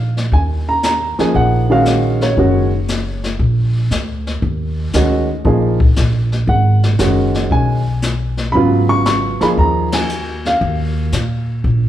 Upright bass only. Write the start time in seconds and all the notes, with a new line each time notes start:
Already playing: A#1
0.32 D#2
1.19 muted upright bass stroke
1.35 A#1
2.37 F#1
3.39 A#1
3.91 D2
4.42 D#2
4.94 D2
5.45 A#1
5.97 A#1
6.47 G#1
6.99 F#1
7.51 B1
8.54 G#1
9.41 muted upright bass stroke
9.57 D#2
10.61 D#2
11.12 A#2
11.64 A#1